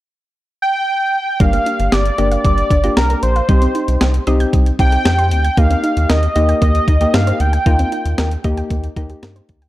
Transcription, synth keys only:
1.40 A#3 D4 G4
2.18 A#3 D4 G4
2.84 A#3 D4 G4
3.49 C4 D#4 G4
4.27 C4 D#4 G4
4.79 C4 D#4 G4
5.58 A#3 D#4 G4
6.36 A#3 D#4 G4
7.01 A#3 D#4 G4
7.66 A#3 D#4 F4
8.44 A#3 D#4 G4
8.97 A#3 D#4 G4

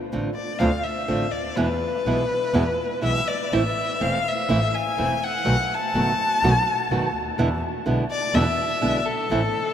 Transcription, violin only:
0.35 D5
0.59 F5
0.83 E5
1.31 D5
1.55 B4
3.04 E5
3.28 D5
3.53 E5
4.02 F5
4.28 E5
4.74 G#5
5.23 F#5
5.74 A5
8.10 D5
8.34 E5
9.05 A4

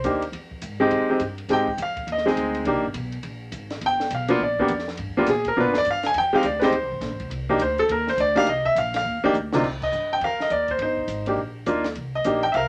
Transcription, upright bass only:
0.04 D#2
0.32 F2
0.62 G#2
0.90 F2
1.20 G2
1.48 G#2
1.77 F2
2.07 D#2
2.36 D2
2.65 C2
2.75 A#1
2.85 G1
2.95 B1
3.23 A#1
3.52 G#1
3.81 G1
4.11 B1
4.40 A#1
4.69 F2
4.98 G2
5.08 F2
5.17 D2
5.27 A#2
5.56 B2
5.66 G2
5.76 F2
5.86 G2
6.14 F2
6.43 D2
6.72 D#2
6.82 C2
6.92 G#1
7.01 A#1
7.11 G#1
7.20 F1
7.30 C2
7.58 D2
7.88 D#2
8.17 D2
8.47 C2
8.75 A#1
9.05 D#2
9.23 muted upright bass stroke
9.33 D2
9.63 C2
9.92 G2
10.20 F2
10.39 muted upright bass stroke
10.50 D#2
10.78 G1
11.08 G#1
11.36 A#1
11.66 D#2
11.96 C2
12.25 A#1
12.54 C2

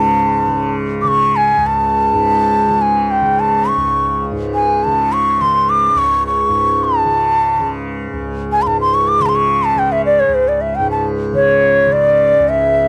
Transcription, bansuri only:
Already playing: A5
1.02 D6
1.08 C#6
1.36 G#5
1.67 A5
2.82 G#5
3.11 G5
3.40 A5
3.69 C#6
4.54 G#5
4.84 A5
5.13 C#6
5.41 C6
5.70 D6
5.98 C#6
6.27 C#6
6.84 A5
8.52 G#5
8.62 C6
8.67 A5
8.81 C6
8.94 C#6
9.08 D6
9.22 C6
9.26 A5 C6
9.35 C#6
9.64 A5
9.79 G5
9.92 E5
10.06 D5
10.20 C#5
10.34 C5
10.48 D5
10.61 E5
10.76 G5
10.91 A5
11.35 C#5
11.92 D5
12.49 E5

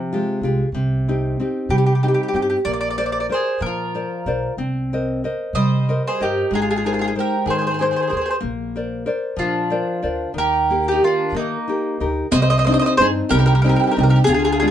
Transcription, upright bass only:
Already playing: F3
0.41 C2
0.72 C2
1.69 C3
2.33 G2
2.65 A#1
3.61 A#2
4.26 B1
4.57 C2
5.53 C3
6.21 G2
6.51 G#1
7.46 G#2
8.12 D#2
8.43 A#1
9.37 A#2
10.04 D2
10.34 D#2
11.32 D#3
12.00 D2
12.32 C2
12.98 G2
13.30 C2
13.97 C2
14.28 D2

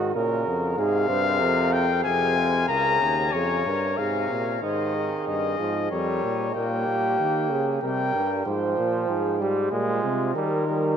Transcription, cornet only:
0.78 F5
1.73 G5
2.04 G#5
2.68 A#5
3.32 C#5
3.97 F5
4.63 D#5
5.28 D#5
5.91 C#5
6.55 G5
7.84 G5

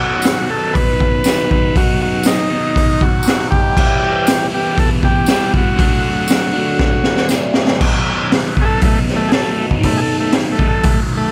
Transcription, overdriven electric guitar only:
Already playing: B2 D#3 F#3 B3 D#4
0.48 D#3 F#3 B3 D#4
0.53 B2
1.23 B2 D#3 F#3 B3
1.28 D#4
1.74 B2 D#3 F#3 B3
1.79 D#4
2.49 D#3 F#3 B3 D#4
2.54 B2
3.23 B2 D#3 F#3
3.27 B3 D#4
3.74 E3 G3 B3
3.79 E4
4.50 G3 B3 E4
4.54 E3
5.27 E3 G3 B3
5.32 E4
5.76 D3 F#3 A3 D4
6.53 F#3 A3 D4
6.58 D3
7.30 D3 F#3 A3
7.35 D4
7.79 B2 D#3 F#3 B3
7.84 D#4
8.56 D#3 F#3 B3 D#4
8.61 B2
9.31 B2 D#3 F#3
9.35 B3 D#4
9.79 B2 D#3 F#3
9.84 B3 D#4
10.57 F#3 B3 D#4
10.61 B2 D#3

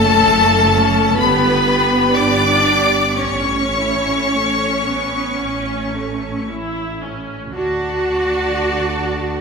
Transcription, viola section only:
Already playing: C#4 A4
0.70 C#4 A4
1.19 B3 G4
1.67 B3 G4
2.67 B3 G4
3.74 A3 E4
4.29 A3
4.84 B3
5.39 C#4
5.93 A3
6.48 E4
7.01 C#4
7.54 D4

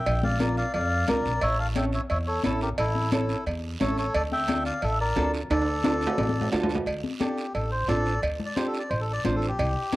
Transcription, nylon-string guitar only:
0.40 D4 F4 A#4
1.08 D4 F4 A#4
1.75 C#4 E4 A4
2.44 C#4 E4 A4
3.12 C#4 E4 A4
3.80 C#4 E4 A4
4.48 D4 F4 A4
5.16 D4 F4 A4
5.84 D4 F4 A4
6.52 D4 F4 A4
7.20 D4 F4 A4
7.88 D4 F4 C5
8.56 D4 F4 G4
9.24 D4 F4 C5
9.92 C4 E4

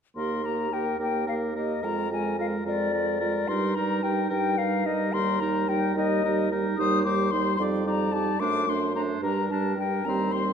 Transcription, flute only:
0.16 C6
0.45 A#5
0.73 G5
1.01 G5
1.28 F5
1.57 D#5
1.85 A#5
2.13 G#5
2.40 F5
2.66 D5
3.48 C6
3.75 A#5
4.03 G5
4.31 G5
4.58 F5
4.86 D#5
5.13 C6
5.40 A#5
5.69 G5
5.96 D#5
6.78 D#6
7.04 D6
7.31 C6
7.57 C6
7.86 A#5
8.12 A5
8.40 D6
8.69 C6
8.96 A#5
9.23 A#5
9.50 A5
9.78 G5
10.05 A#5
10.32 C6

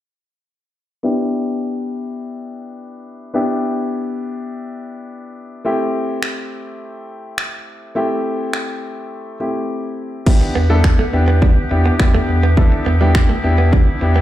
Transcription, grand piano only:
1.03 B3 D4 E4 G4
3.34 B3 D4 E4 G4
5.65 A3 C4 E4 G4
7.95 A3 C4 E4 G4
9.40 A3 C4 E4 G4
10.26 B3 D4 E4 G4
10.69 B3 D4 E4 A4
11.13 B3 D4 E4 G4
11.70 B3 D4 E4 G4
11.99 B3 D4 E4 G4
12.57 B3 D4 E4 A4
13.00 B3 D4 E4 G4
13.44 B3 D4 E4 G4
14.01 B3 D4 E4 G4

